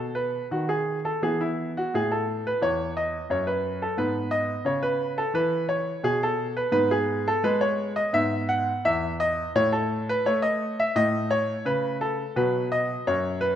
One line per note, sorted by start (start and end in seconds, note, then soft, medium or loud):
0.00 0.37 B2 soft
0.00 1.17 B3 soft
0.00 0.15 A4 medium
0.15 0.46 B4 medium
0.51 1.08 D#3 soft
0.51 0.69 F#4 medium
0.69 0.99 G#4 medium
1.05 1.22 A4 medium
1.22 1.78 E3 soft
1.22 3.94 B3 soft
1.22 1.40 G#4 medium
1.41 1.70 E4 medium
1.77 1.93 F#4 medium
1.94 2.49 A2 soft
1.94 2.11 G#4 medium
2.12 2.45 A4 medium
2.47 2.62 B4 medium
2.61 3.16 E2 soft
2.61 2.91 C#5 medium
2.97 3.25 D#5 medium
3.30 3.84 F#2 soft
3.30 3.47 C#5 medium
3.47 3.81 B4 medium
3.82 3.98 A4 medium
3.97 4.52 G#2 soft
3.97 6.69 B3 soft
3.97 4.32 B4 medium
4.31 4.65 D#5 medium
4.65 5.21 C#3 soft
4.65 4.83 C#5 medium
4.83 5.18 B4 medium
5.18 5.35 A4 medium
5.34 5.90 E3 soft
5.34 5.65 B4 medium
5.69 6.04 C#5 medium
6.03 6.59 B2 soft
6.03 6.22 G#4 medium
6.23 6.52 A4 medium
6.57 6.71 B4 medium
6.72 7.28 G#2 soft
6.72 8.08 B3 soft
6.72 6.90 B4 medium
6.91 7.26 G#4 medium
7.28 7.44 A4 medium
7.44 7.99 G#3 medium
7.44 7.61 B4 medium
7.61 7.90 C#5 medium
7.96 8.13 D#5 medium
8.13 8.69 G#2 medium
8.13 9.50 B3 soft
8.13 8.48 E5 medium
8.49 8.83 F#5 medium
8.85 9.41 E2 soft
8.85 9.14 E5 medium
9.20 9.50 D#5 medium
9.55 10.11 A2 soft
9.55 10.24 A3 soft
9.55 9.73 C#5 medium
9.72 10.08 A4 medium
10.09 10.26 B4 medium
10.26 10.81 A3 soft
10.26 10.43 C#5 medium
10.42 10.77 D#5 medium
10.80 10.96 E5 medium
10.95 11.52 A2 soft
10.95 12.33 A3 soft
10.95 11.31 D#5 medium
11.31 11.66 C#5 medium
11.65 12.22 C#3 soft
11.65 11.96 B4 medium
12.01 12.31 A4 medium
12.36 12.92 B2 medium
12.36 13.55 F#3 soft
12.36 12.66 B4 medium
12.72 13.07 D#5 medium
13.07 13.55 F#2 soft
13.07 13.37 C#5 medium
13.41 13.55 B4 medium